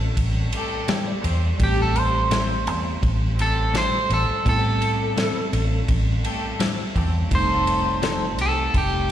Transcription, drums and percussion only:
0.17 kick, ride
0.52 ride
0.88 snare, ride
1.24 ride
1.60 kick, ride
1.96 ride
2.31 snare, ride
2.67 ride
3.03 kick, ride
3.39 ride
3.75 snare, ride
4.10 ride
4.46 kick, ride
4.82 ride
5.18 snare, ride
5.53 ride
5.88 kick, ride
6.25 ride
6.60 snare, ride
6.96 kick, ride
7.31 kick, ride
7.67 ride
8.03 snare, ride
8.38 ride
8.74 kick, ride

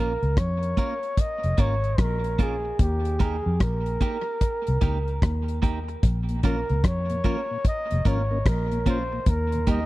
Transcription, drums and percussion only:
0.23 closed hi-hat
0.37 kick, cross-stick, closed hi-hat
0.63 closed hi-hat
0.77 kick, closed hi-hat
1.03 closed hi-hat
1.17 kick, closed hi-hat
1.43 closed hi-hat
1.58 kick, closed hi-hat
1.84 closed hi-hat
1.98 kick, cross-stick, closed hi-hat
2.24 closed hi-hat
2.39 kick, closed hi-hat
2.79 kick, closed hi-hat
3.05 closed hi-hat
3.20 kick, closed hi-hat
3.60 kick, cross-stick, closed hi-hat
3.86 closed hi-hat
4.01 kick, closed hi-hat
4.41 kick, closed hi-hat
4.67 closed hi-hat
4.81 kick, closed hi-hat
5.08 closed hi-hat
5.22 kick, cross-stick, closed hi-hat
5.48 closed hi-hat
5.63 kick, closed hi-hat
5.89 closed hi-hat
6.03 kick, closed hi-hat
6.29 closed hi-hat
6.43 kick, closed hi-hat
6.69 closed hi-hat
6.84 kick, cross-stick, closed hi-hat
7.10 closed hi-hat
7.24 kick, closed hi-hat
7.65 kick, closed hi-hat
7.91 closed hi-hat
8.05 kick, closed hi-hat
8.46 kick, cross-stick, closed hi-hat
8.71 closed hi-hat
8.86 kick, closed hi-hat
9.26 kick, closed hi-hat
9.52 closed hi-hat
9.67 kick, closed hi-hat

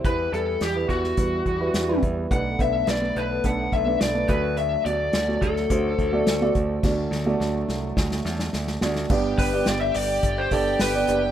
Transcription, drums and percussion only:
0.04 kick, closed hi-hat
0.34 closed hi-hat
0.61 snare, closed hi-hat
0.89 kick, closed hi-hat
1.04 snare
1.17 kick, closed hi-hat
1.46 kick, closed hi-hat
1.74 snare, closed hi-hat
2.02 kick, closed hi-hat
2.31 kick, closed hi-hat
2.59 kick, closed hi-hat
2.87 snare, closed hi-hat
3.16 closed hi-hat
3.44 kick, closed hi-hat
3.72 kick, closed hi-hat
4.01 snare, closed hi-hat
4.28 kick, closed hi-hat
4.57 closed hi-hat
4.86 closed hi-hat
5.13 snare, closed hi-hat
5.42 kick, closed hi-hat
5.56 snare
5.70 kick, closed hi-hat
5.99 kick, closed hi-hat
6.27 snare, closed hi-hat
6.55 kick, closed hi-hat
6.83 kick, snare, crash
7.12 snare
7.40 snare
7.69 snare
7.97 kick, snare
8.11 snare
8.25 snare
8.39 snare
8.53 snare
8.67 snare
8.81 snare
8.96 snare
9.10 kick, crash
9.38 kick, hi-hat pedal, open hi-hat
9.65 snare, hi-hat pedal, open hi-hat
9.94 hi-hat pedal, open hi-hat
10.23 kick, hi-hat pedal, open hi-hat
10.51 kick, hi-hat pedal, open hi-hat
10.79 snare, hi-hat pedal, open hi-hat
11.07 hi-hat pedal, open hi-hat

